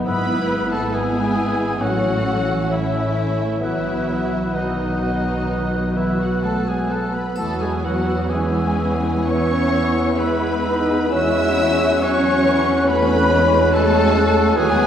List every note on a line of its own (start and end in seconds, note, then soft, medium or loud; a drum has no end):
0.00 0.11 F#2 soft
0.00 0.11 F#3 soft
0.00 0.49 B3 soft
0.00 1.78 B3 medium
0.00 0.11 A4 soft
0.00 0.11 D#5 soft
0.06 1.78 G#1 medium
0.06 1.85 G#2 medium
0.06 0.50 B3 medium
0.06 0.90 B3 medium
0.06 0.69 B3 medium
0.06 0.90 E4 medium
0.06 3.45 E4 medium
0.06 0.74 B4 medium
0.06 0.69 B4 medium
0.06 0.69 B5 medium
0.06 0.50 E6 medium
0.28 1.58 G#3 soft
0.50 0.93 B3 soft
0.50 1.35 B3 soft
0.50 0.93 E6 soft
0.72 0.94 A3 medium
0.72 0.95 A4 medium
0.72 1.14 B4 soft
0.72 0.95 A5 medium
0.92 1.82 G#3 medium
0.92 1.80 B3 medium
0.92 1.36 B3 soft
0.92 1.80 E4 medium
0.92 1.83 G#4 medium
0.92 1.82 G#4 medium
0.92 2.69 E5 soft
0.92 1.81 G#5 medium
0.92 1.36 E6 soft
1.36 1.80 B3 soft
1.36 1.80 E6 soft
1.59 1.85 G#3 soft
1.80 3.62 A1 soft
1.80 3.66 A2 soft
1.80 2.69 F#3 medium
1.80 2.69 A3 soft
1.80 2.25 C#4 soft
1.80 2.69 C#4 soft
1.80 3.45 C#4 soft
1.80 2.71 F#4 medium
1.80 2.71 F#5 medium
1.80 2.25 E6 soft
2.03 3.38 E3 soft
2.25 3.14 C#4 soft
2.25 2.69 C#4 soft
2.25 2.70 E6 soft
2.47 2.91 A4 soft
2.70 3.61 E3 soft
2.70 3.60 A3 soft
2.70 3.14 C#4 soft
2.70 3.60 C#4 soft
2.70 3.62 E4 medium
2.70 3.61 E4 soft
2.70 3.61 E5 medium
2.70 3.65 E5 soft
2.70 3.15 E6 soft
2.93 3.65 A4 soft
3.15 3.60 C#4 soft
3.15 3.66 C#4 soft
3.15 3.61 E6 soft
3.39 3.66 E3 soft
3.60 7.16 B1 soft
3.60 5.49 B2 soft
3.60 4.53 E3 soft
3.60 4.53 F#3 soft
3.60 4.52 B3 soft
3.60 4.07 B3 soft
3.60 7.00 B3 soft
3.60 4.53 E4 medium
3.60 7.00 F#4 soft
3.60 4.53 E5 medium
3.60 4.08 F#6 soft
3.64 4.57 E4 soft
3.86 5.26 F#3 soft
4.07 4.53 B3 soft
4.07 5.02 B3 soft
4.07 4.54 F#6 soft
4.54 5.96 D#3 soft
4.54 7.12 F#3 soft
4.54 7.11 B3 soft
4.54 5.00 B3 soft
4.54 5.96 D#4 soft
4.54 6.43 B4 soft
4.54 5.96 D#5 soft
4.54 5.01 F#6 soft
4.79 6.19 F#4 soft
5.02 5.35 B3 soft
5.02 5.72 B3 soft
5.02 5.48 F#6 soft
5.27 5.96 F#3 soft
5.49 7.41 B2 soft
5.49 5.95 B3 soft
5.49 5.95 F#6 soft
5.73 6.90 B3 soft
5.96 6.20 E3 soft
5.96 7.14 F#3 soft
5.96 6.42 B3 soft
5.96 6.19 E4 soft
5.96 6.21 E4 soft
5.96 6.20 E5 soft
5.96 6.42 F#6 soft
6.19 6.43 F#3 soft
6.19 6.43 F#4 soft
6.19 6.45 F#4 soft
6.19 6.66 F#4 soft
6.19 6.44 F#5 soft
6.42 6.66 A3 soft
6.42 6.89 B3 soft
6.42 6.66 A4 soft
6.42 6.69 A4 soft
6.42 8.30 B4 soft
6.42 6.67 A5 medium
6.42 6.89 F#6 soft
6.65 6.90 G#3 soft
6.65 7.41 F#4 soft
6.65 6.89 G#4 soft
6.65 6.93 G#4 soft
6.65 6.91 G#5 soft
6.88 7.14 A3 soft
6.88 7.36 B3 soft
6.88 7.83 B3 soft
6.88 7.13 A4 soft
6.88 7.15 A4 soft
6.88 7.14 A5 soft
6.88 7.16 F#6 soft
7.13 7.41 F#3 soft
7.13 7.37 B3 soft
7.13 7.37 B4 soft
7.13 7.37 B5 soft
7.36 11.09 E2 soft
7.36 9.27 E3 soft
7.36 8.25 F#3 soft
7.36 7.60 A3 medium
7.36 11.09 B3 soft
7.36 8.25 B3 soft
7.36 7.82 B3 soft
7.36 11.09 E4 medium
7.36 7.60 A4 medium
7.36 7.63 A4 medium
7.36 7.60 A5 medium
7.36 7.82 E6 soft
7.36 triangle soft
7.60 7.82 G#3 soft
7.60 9.02 E4 soft
7.60 7.83 G#4 soft
7.60 7.84 G#4 soft
7.60 7.84 G#5 medium
7.83 8.28 F#3 soft
7.83 8.28 B3 soft
7.83 8.77 B3 soft
7.83 8.30 F#4 soft
7.83 8.31 F#4 soft
7.83 8.29 F#5 medium
7.83 8.28 E6 soft
8.07 8.53 G#4 soft
8.28 8.77 E3 soft
8.28 9.25 G#3 soft
8.28 8.77 B3 soft
8.28 9.27 C#4 soft
8.28 8.97 G#4 soft
8.28 9.28 G#4 soft
8.28 10.17 B4 soft
8.28 9.27 G#5 medium
8.28 8.77 E6 soft
8.54 9.94 G#4 soft
8.78 10.15 E3 soft
8.78 9.49 B3 soft
8.78 9.26 B3 soft
8.78 9.26 E6 soft
9.03 9.72 E4 soft
9.26 11.12 E3 soft
9.26 10.18 B3 soft
9.26 9.73 B3 soft
9.26 10.18 C#4 medium
9.26 10.18 C#5 medium
9.26 10.21 C#5 medium
9.26 10.17 C#6 medium
9.26 9.72 E6 soft
9.51 10.64 B3 soft
9.73 10.17 B3 soft
9.73 10.88 E4 soft
9.73 10.17 E6 soft
9.96 10.40 G#4 soft
10.17 11.11 G#3 medium
10.17 11.13 B3 medium
10.17 10.64 B3 soft
10.17 10.65 E4 medium
10.17 11.17 B4 soft
10.17 11.13 B4 medium
10.17 11.14 B4 medium
10.17 11.13 B5 medium
10.17 10.64 E6 soft
10.41 11.17 G#4 soft
10.65 11.17 B3 soft
10.65 11.11 B3 medium
10.65 11.13 D#4 medium
10.65 11.12 E6 medium
10.89 11.35 E4 soft
11.11 14.53 E2 medium
11.11 12.85 E3 medium
11.11 12.01 G#3 medium
11.11 11.44 C#4 medium
11.11 14.53 C#4 medium
11.11 13.70 C#4 medium
11.11 12.00 E4 medium
11.11 14.87 F#4 medium
11.11 12.02 E5 medium
11.11 12.04 E5 medium
11.11 12.03 E6 medium
11.11 11.57 F#6 medium
11.36 12.64 E4 soft
11.57 12.43 A3 soft
11.57 12.01 C#4 medium
11.57 12.01 F#6 medium
11.80 12.23 F#4 soft
12.01 12.45 F#3 medium
12.01 12.86 C#4 medium
12.01 12.44 C#4 medium
12.01 13.72 C#5 soft
12.01 12.87 C#5 medium
12.01 12.88 C#5 medium
12.01 12.88 C#6 medium
12.01 12.45 F#6 medium
12.24 13.50 F#4 soft
12.44 12.88 E3 medium
12.44 13.07 A3 medium
12.44 12.87 C#4 medium
12.44 12.87 F#6 medium
12.86 14.60 E3 medium
12.86 13.30 A3 medium
12.86 13.73 B3 medium
12.86 13.30 C#4 medium
12.86 13.72 B4 medium
12.86 13.76 B4 medium
12.86 13.72 B5 loud
12.86 13.30 F#6 medium
13.08 14.13 A3 medium
13.29 14.57 G#3 medium
13.29 13.73 C#4 medium
13.29 14.34 E4 medium
13.29 13.54 F#6 medium
13.51 13.93 F#4 medium
13.72 14.55 A3 medium
13.72 14.14 C#4 medium
13.72 14.13 C#4 medium
13.72 14.57 A4 medium
13.72 14.58 A4 medium
13.72 14.60 C#5 medium
13.72 14.56 A5 loud
13.72 14.14 F#6 medium
13.95 14.87 F#4 medium
14.14 14.60 A3 medium
14.14 14.57 A3 medium
14.14 14.55 C#4 medium
14.14 14.56 F#6 medium
14.36 14.60 E4 medium
14.56 14.87 D#2 medium
14.56 14.87 D#3 medium
14.56 14.87 F#3 medium
14.56 14.87 G#3 medium
14.56 14.87 B3 medium
14.56 14.87 G#4 medium
14.56 14.87 G#5 loud
14.56 14.87 F#6 medium